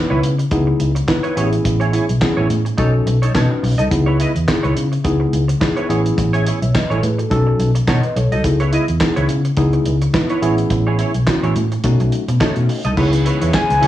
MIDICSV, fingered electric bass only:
0, 0, Header, 1, 2, 480
1, 0, Start_track
1, 0, Key_signature, 4, "minor"
1, 0, Tempo, 566038
1, 1400, Time_signature, 4, 2, 24, 8
1, 11767, End_track
2, 0, Start_track
2, 0, Title_t, "Fingered electric bass"
2, 0, Program_c, 0, 33
2, 91, Note_on_c, 0, 37, 90
2, 170, Note_off_c, 0, 37, 0
2, 196, Note_on_c, 0, 49, 84
2, 373, Note_off_c, 0, 49, 0
2, 438, Note_on_c, 0, 37, 102
2, 614, Note_off_c, 0, 37, 0
2, 679, Note_on_c, 0, 37, 99
2, 855, Note_off_c, 0, 37, 0
2, 1160, Note_on_c, 0, 33, 95
2, 1336, Note_off_c, 0, 33, 0
2, 1400, Note_on_c, 0, 33, 103
2, 1675, Note_off_c, 0, 33, 0
2, 1773, Note_on_c, 0, 35, 83
2, 1851, Note_off_c, 0, 35, 0
2, 2013, Note_on_c, 0, 33, 92
2, 2091, Note_off_c, 0, 33, 0
2, 2118, Note_on_c, 0, 45, 91
2, 2295, Note_off_c, 0, 45, 0
2, 2359, Note_on_c, 0, 35, 96
2, 2535, Note_off_c, 0, 35, 0
2, 2596, Note_on_c, 0, 35, 104
2, 2773, Note_off_c, 0, 35, 0
2, 2839, Note_on_c, 0, 47, 86
2, 2938, Note_off_c, 0, 47, 0
2, 3079, Note_on_c, 0, 35, 88
2, 3178, Note_off_c, 0, 35, 0
2, 3211, Note_on_c, 0, 36, 73
2, 3290, Note_off_c, 0, 36, 0
2, 3320, Note_on_c, 0, 37, 104
2, 3594, Note_off_c, 0, 37, 0
2, 3694, Note_on_c, 0, 40, 79
2, 3771, Note_off_c, 0, 40, 0
2, 3933, Note_on_c, 0, 37, 93
2, 4011, Note_off_c, 0, 37, 0
2, 4039, Note_on_c, 0, 49, 97
2, 4215, Note_off_c, 0, 49, 0
2, 4280, Note_on_c, 0, 37, 88
2, 4456, Note_off_c, 0, 37, 0
2, 4519, Note_on_c, 0, 37, 85
2, 4695, Note_off_c, 0, 37, 0
2, 5000, Note_on_c, 0, 33, 100
2, 5175, Note_off_c, 0, 33, 0
2, 5240, Note_on_c, 0, 33, 101
2, 5515, Note_off_c, 0, 33, 0
2, 5612, Note_on_c, 0, 35, 80
2, 5690, Note_off_c, 0, 35, 0
2, 5853, Note_on_c, 0, 33, 90
2, 5931, Note_off_c, 0, 33, 0
2, 5959, Note_on_c, 0, 45, 95
2, 6135, Note_off_c, 0, 45, 0
2, 6199, Note_on_c, 0, 35, 99
2, 6375, Note_off_c, 0, 35, 0
2, 6438, Note_on_c, 0, 35, 112
2, 6615, Note_off_c, 0, 35, 0
2, 6678, Note_on_c, 0, 47, 87
2, 6777, Note_off_c, 0, 47, 0
2, 6918, Note_on_c, 0, 35, 90
2, 7017, Note_off_c, 0, 35, 0
2, 7052, Note_on_c, 0, 36, 79
2, 7130, Note_off_c, 0, 36, 0
2, 7157, Note_on_c, 0, 37, 94
2, 7433, Note_off_c, 0, 37, 0
2, 7533, Note_on_c, 0, 40, 89
2, 7611, Note_off_c, 0, 40, 0
2, 7773, Note_on_c, 0, 37, 90
2, 7851, Note_off_c, 0, 37, 0
2, 7879, Note_on_c, 0, 49, 85
2, 8055, Note_off_c, 0, 49, 0
2, 8116, Note_on_c, 0, 37, 91
2, 8293, Note_off_c, 0, 37, 0
2, 8362, Note_on_c, 0, 37, 101
2, 8537, Note_off_c, 0, 37, 0
2, 8838, Note_on_c, 0, 33, 98
2, 9015, Note_off_c, 0, 33, 0
2, 9079, Note_on_c, 0, 33, 115
2, 9354, Note_off_c, 0, 33, 0
2, 9453, Note_on_c, 0, 35, 78
2, 9531, Note_off_c, 0, 35, 0
2, 9693, Note_on_c, 0, 33, 81
2, 9771, Note_off_c, 0, 33, 0
2, 9798, Note_on_c, 0, 45, 96
2, 9975, Note_off_c, 0, 45, 0
2, 10039, Note_on_c, 0, 47, 94
2, 10138, Note_off_c, 0, 47, 0
2, 10175, Note_on_c, 0, 35, 90
2, 10252, Note_off_c, 0, 35, 0
2, 10414, Note_on_c, 0, 47, 80
2, 10492, Note_off_c, 0, 47, 0
2, 10656, Note_on_c, 0, 47, 80
2, 10733, Note_off_c, 0, 47, 0
2, 10895, Note_on_c, 0, 36, 78
2, 10972, Note_off_c, 0, 36, 0
2, 11000, Note_on_c, 0, 37, 116
2, 11274, Note_off_c, 0, 37, 0
2, 11376, Note_on_c, 0, 40, 81
2, 11453, Note_off_c, 0, 40, 0
2, 11617, Note_on_c, 0, 37, 90
2, 11693, Note_off_c, 0, 37, 0
2, 11721, Note_on_c, 0, 49, 99
2, 11767, Note_off_c, 0, 49, 0
2, 11767, End_track
0, 0, End_of_file